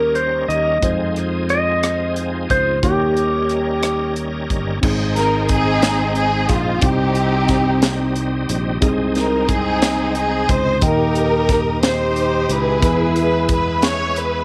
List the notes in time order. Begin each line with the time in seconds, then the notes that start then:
Already playing: D#2 D#3 G3 A#3 C#4 D#4 G4 A#4
0.15 C5, closed hi-hat
0.48 D#2 D#5, closed hi-hat
0.81 F2 F3 G#3 C4 D#4 F4 G#4 C5, kick, closed hi-hat
1.16 cross-stick, closed hi-hat
1.49 D#5, closed hi-hat
1.83 cross-stick, closed hi-hat
2.16 closed hi-hat
2.50 C#2 C5, kick, closed hi-hat
2.82 D#2 D#3 G3 A#3 C#4 D#4 G4 A#4 C#5, kick, closed hi-hat
3.17 closed hi-hat
3.49 cross-stick, closed hi-hat
3.83 cross-stick, closed hi-hat
4.16 closed hi-hat
4.50 G1, kick, closed hi-hat
4.82 G#1 G#2 G#3 C4 C#4 D#4 G#4, kick, crash
4.90 D#4
5.16 A#4, snare, closed hi-hat
5.49 C4 D#4 G#4, kick, closed hi-hat
5.82 snare, closed hi-hat
6.15 G#4, closed hi-hat
6.49 A#1 F4, kick, closed hi-hat
6.80 C2 C3 G3 C4 D4 D#4 G4, kick, closed hi-hat
6.86 C4 D#4 G4
7.15 closed hi-hat
7.48 kick, snare, closed hi-hat
7.82 snare, closed hi-hat
8.16 closed hi-hat
8.49 A#1, closed hi-hat
8.81 C2 C3 G#3 A#3 C4 D#4 G#4, kick, closed hi-hat
8.88 C4
9.15 A#4, snare, closed hi-hat
9.49 C4 D#4 G#4, kick, closed hi-hat
9.82 snare, closed hi-hat
10.15 G#4, closed hi-hat
10.49 C#2 C5, kick, closed hi-hat
10.81 D#2 A#2 D#3 D#4 G4 A#4 D#5 G5, kick, closed hi-hat
11.15 closed hi-hat
11.49 kick, snare, closed hi-hat
11.83 D#4 G4 C5, snare, closed hi-hat
12.16 closed hi-hat
12.49 C#2 E4 G#4 B4, closed hi-hat
12.81 E2 E3 G#3 B3 G#4 E5, kick, closed hi-hat
13.16 B4, closed hi-hat
13.49 B4, kick, closed hi-hat
13.82 C#5, snare, closed hi-hat
14.16 B4, closed hi-hat